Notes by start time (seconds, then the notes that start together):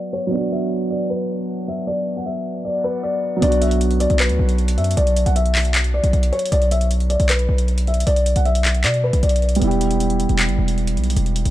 Already playing: F#3 B3 D4 F#4 B4 D5 F#5
0.13 C#5
0.27 F#3 B3
0.33 D4 D5
0.38 F#4
0.52 E5
0.90 D5
1.10 B4
1.68 E5
1.87 D5
2.17 F#5
2.26 E5
2.65 D5
2.84 B4
3.03 D5
3.37 F#3 B3
3.42 B1 D4 D5, closed hi-hat
3.48 F#4
3.52 closed hi-hat
3.61 E5, closed hi-hat
3.71 closed hi-hat
3.81 closed hi-hat
3.91 closed hi-hat
4.00 D5, closed hi-hat
4.10 B1, closed hi-hat
4.20 B4, clap, closed hi-hat
4.29 D2, closed hi-hat
4.39 B1
4.49 closed hi-hat
4.58 closed hi-hat
4.68 closed hi-hat
4.78 F#2 E5, closed hi-hat
4.84 closed hi-hat
4.91 closed hi-hat
4.97 B1 D5, closed hi-hat
5.07 closed hi-hat
5.16 closed hi-hat
5.26 B1 F#5, closed hi-hat
5.36 E5, closed hi-hat
5.46 closed hi-hat
5.55 clap, open hi-hat
5.65 closed hi-hat
5.75 clap, closed hi-hat
5.84 closed hi-hat
5.94 D5
6.04 B1, closed hi-hat
6.13 B1, closed hi-hat
6.23 closed hi-hat
6.32 C#5, closed hi-hat
6.39 closed hi-hat
6.46 closed hi-hat
6.52 B1 D5, closed hi-hat
6.62 closed hi-hat
6.71 E5, closed hi-hat
6.81 closed hi-hat
6.91 closed hi-hat
7.00 closed hi-hat
7.10 D5, closed hi-hat
7.20 B1, closed hi-hat
7.29 B4, clap, closed hi-hat
7.39 closed hi-hat
7.49 B1
7.58 closed hi-hat
7.68 closed hi-hat
7.78 closed hi-hat
7.87 E5, closed hi-hat
7.94 closed hi-hat
8.00 closed hi-hat
8.07 B1 D5, closed hi-hat
8.16 closed hi-hat
8.26 closed hi-hat
8.36 B1 F#5, closed hi-hat
8.45 E5, closed hi-hat
8.55 closed hi-hat
8.65 clap, closed hi-hat
8.75 closed hi-hat
8.84 B2 D5, clap, closed hi-hat
8.94 closed hi-hat
9.04 B4
9.13 B1, closed hi-hat
9.23 B1 D5, closed hi-hat
9.29 closed hi-hat
9.36 closed hi-hat
9.42 closed hi-hat
9.49 closed hi-hat
9.55 G3, closed hi-hat
9.60 E1 B3 E4, closed hi-hat
9.67 G4, closed hi-hat
9.81 closed hi-hat
9.91 closed hi-hat
10.00 closed hi-hat
10.10 closed hi-hat
10.20 closed hi-hat
10.29 E1, closed hi-hat
10.39 clap, closed hi-hat
10.49 G1, closed hi-hat
10.58 E1
10.68 closed hi-hat
10.78 closed hi-hat
10.87 closed hi-hat
10.97 B1, closed hi-hat
11.04 closed hi-hat
11.10 closed hi-hat
11.16 E1, closed hi-hat
11.26 closed hi-hat
11.36 closed hi-hat
11.45 E1, closed hi-hat